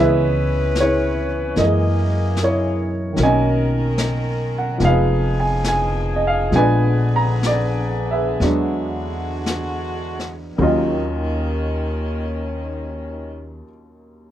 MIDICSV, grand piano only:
0, 0, Header, 1, 2, 480
1, 0, Start_track
1, 0, Key_signature, -6, "minor"
1, 0, Tempo, 805369
1, 1887, Time_signature, 4, 2, 24, 8
1, 2856, Tempo, 859599
1, 3816, Tempo, 918836
1, 4296, Tempo, 972447
1, 4776, Tempo, 1041667
1, 5256, Tempo, 1129944
1, 5736, Tempo, 1178782
1, 7257, End_track
2, 0, Start_track
2, 0, Title_t, "Grand piano"
2, 0, Program_c, 0, 0
2, 0, Note_on_c, 0, 52, 52
2, 0, Note_on_c, 0, 56, 49
2, 0, Note_on_c, 0, 59, 47
2, 0, Note_on_c, 0, 64, 58
2, 0, Note_on_c, 0, 68, 61
2, 0, Note_on_c, 0, 71, 57
2, 0, Note_on_c, 0, 76, 72
2, 75, Control_c, 0, 64, 127
2, 438, Note_off_c, 0, 76, 0
2, 480, Note_off_c, 0, 64, 0
2, 480, Note_off_c, 0, 68, 0
2, 480, Note_on_c, 0, 73, 64
2, 489, Note_on_c, 0, 64, 50
2, 489, Note_on_c, 0, 68, 44
2, 918, Note_off_c, 0, 71, 0
2, 923, Note_off_c, 0, 52, 0
2, 924, Note_off_c, 0, 68, 0
2, 925, Note_off_c, 0, 64, 0
2, 927, Note_off_c, 0, 56, 0
2, 931, Note_on_c, 0, 52, 47
2, 936, Note_off_c, 0, 59, 0
2, 936, Note_on_c, 0, 56, 45
2, 937, Control_c, 0, 64, 0
2, 938, Note_on_c, 0, 58, 46
2, 942, Note_on_c, 0, 75, 57
2, 956, Note_off_c, 0, 75, 0
2, 958, Note_off_c, 0, 73, 0
2, 965, Note_on_c, 0, 75, 70
2, 970, Note_on_c, 0, 70, 44
2, 971, Note_on_c, 0, 68, 48
2, 1031, Control_c, 0, 64, 127
2, 1440, Note_off_c, 0, 70, 0
2, 1449, Note_on_c, 0, 70, 46
2, 1450, Note_on_c, 0, 64, 47
2, 1455, Note_on_c, 0, 73, 58
2, 1723, Note_off_c, 0, 75, 0
2, 1864, Note_on_c, 0, 51, 46
2, 1883, Note_off_c, 0, 68, 0
2, 1883, Note_off_c, 0, 70, 0
2, 1884, Note_off_c, 0, 64, 0
2, 1884, Note_on_c, 0, 54, 41
2, 1887, Note_off_c, 0, 52, 0
2, 1889, Note_off_c, 0, 56, 0
2, 1890, Note_off_c, 0, 58, 0
2, 1895, Control_c, 0, 64, 0
2, 1907, Note_on_c, 0, 58, 43
2, 1923, Note_off_c, 0, 73, 0
2, 1925, Note_on_c, 0, 75, 63
2, 1927, Note_on_c, 0, 80, 80
2, 1929, Note_on_c, 0, 61, 52
2, 2006, Control_c, 0, 64, 127
2, 2690, Note_off_c, 0, 80, 0
2, 2731, Note_on_c, 0, 78, 64
2, 2845, Note_off_c, 0, 51, 0
2, 2846, Note_on_c, 0, 53, 54
2, 2851, Note_off_c, 0, 75, 0
2, 2855, Note_off_c, 0, 54, 0
2, 2858, Note_on_c, 0, 56, 48
2, 2864, Control_c, 0, 64, 0
2, 2864, Note_on_c, 0, 59, 45
2, 2866, Note_off_c, 0, 58, 0
2, 2874, Note_on_c, 0, 63, 55
2, 2876, Note_off_c, 0, 61, 0
2, 2877, Note_off_c, 0, 78, 0
2, 2885, Note_on_c, 0, 77, 79
2, 2894, Note_on_c, 0, 68, 55
2, 2896, Note_on_c, 0, 71, 58
2, 2968, Control_c, 0, 64, 127
2, 3194, Note_off_c, 0, 77, 0
2, 3195, Note_on_c, 0, 80, 68
2, 3330, Note_off_c, 0, 80, 0
2, 3354, Note_on_c, 0, 80, 74
2, 3617, Note_off_c, 0, 80, 0
2, 3619, Note_on_c, 0, 75, 61
2, 3665, Note_off_c, 0, 75, 0
2, 3682, Note_on_c, 0, 77, 79
2, 3802, Note_off_c, 0, 53, 0
2, 3810, Note_on_c, 0, 53, 55
2, 3813, Note_off_c, 0, 56, 0
2, 3813, Note_off_c, 0, 68, 0
2, 3814, Note_off_c, 0, 71, 0
2, 3820, Note_off_c, 0, 59, 0
2, 3821, Note_on_c, 0, 56, 51
2, 3824, Control_c, 0, 64, 0
2, 3825, Note_off_c, 0, 63, 0
2, 3830, Note_on_c, 0, 59, 45
2, 3834, Note_off_c, 0, 77, 0
2, 3835, Note_on_c, 0, 62, 64
2, 3839, Note_on_c, 0, 80, 83
2, 3847, Note_on_c, 0, 71, 67
2, 3849, Note_on_c, 0, 74, 68
2, 3923, Control_c, 0, 64, 127
2, 4126, Note_off_c, 0, 80, 0
2, 4154, Note_on_c, 0, 82, 78
2, 4304, Note_off_c, 0, 74, 0
2, 4309, Note_off_c, 0, 82, 0
2, 4312, Note_on_c, 0, 74, 80
2, 4632, Note_off_c, 0, 71, 0
2, 4632, Note_off_c, 0, 74, 0
2, 4633, Note_on_c, 0, 76, 66
2, 4639, Note_on_c, 0, 68, 47
2, 4640, Note_on_c, 0, 71, 48
2, 4774, Note_off_c, 0, 53, 0
2, 4779, Note_off_c, 0, 56, 0
2, 4781, Note_off_c, 0, 59, 0
2, 4782, Control_c, 0, 64, 0
2, 4782, Note_on_c, 0, 54, 50
2, 4783, Note_off_c, 0, 62, 0
2, 4787, Note_on_c, 0, 56, 48
2, 4788, Note_on_c, 0, 59, 46
2, 4790, Note_on_c, 0, 62, 56
2, 4876, Control_c, 0, 64, 127
2, 5247, Note_off_c, 0, 76, 0
2, 5567, Note_off_c, 0, 68, 0
2, 5568, Note_off_c, 0, 71, 0
2, 5739, Note_off_c, 0, 54, 0
2, 5739, Note_on_c, 0, 39, 56
2, 5741, Note_off_c, 0, 56, 0
2, 5741, Note_on_c, 0, 51, 53
2, 5742, Note_off_c, 0, 59, 0
2, 5742, Note_off_c, 0, 62, 0
2, 5742, Control_c, 0, 64, 0
2, 5746, Note_on_c, 0, 54, 52
2, 5749, Note_on_c, 0, 61, 52
2, 5753, Note_on_c, 0, 65, 61
2, 5758, Note_on_c, 0, 75, 66
2, 5819, Control_c, 0, 64, 127
2, 6985, Note_off_c, 0, 39, 0
2, 6987, Note_off_c, 0, 51, 0
2, 6987, Note_off_c, 0, 75, 0
2, 6991, Note_off_c, 0, 54, 0
2, 6995, Note_off_c, 0, 61, 0
2, 6998, Note_off_c, 0, 65, 0
2, 7257, End_track
0, 0, End_of_file